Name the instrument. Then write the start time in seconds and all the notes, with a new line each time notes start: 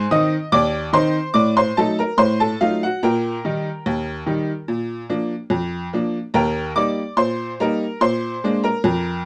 honky-tonk piano
0.11 D#3 C4 D#4 D#5 D#6
0.52 D#2 D5 D6
0.93 D#3 C4 D#4 C5 C6
1.34 A2 D5 D6
1.57 C5 C6
1.77 F#3 A3 D#4 A4 A5
1.99 A#4 A#5
2.18 A2 C5 C6
2.40 A4 A5
2.61 F#3 A3 D#4 F4 F5
2.83 F#4 F#5
3.03 A#2 A#4 G5 A#5
3.45 D#3 G3 D#4
3.86 D#2
4.26 D#3 G3 D#4
4.68 A#2
5.09 F3 A#3 D4
5.50 F2
5.93 F3 A#3 D4
6.34 D#2 A#4 G5 A#5
6.76 G3 A#3 D#4 D5 D6
7.17 A#2 C5 C6
7.60 G3 A#3 D#4 A#4 A#5
8.01 A#2 C5 C6
8.44 G#3 A#3 D4
8.64 A#4 A#5
8.84 F2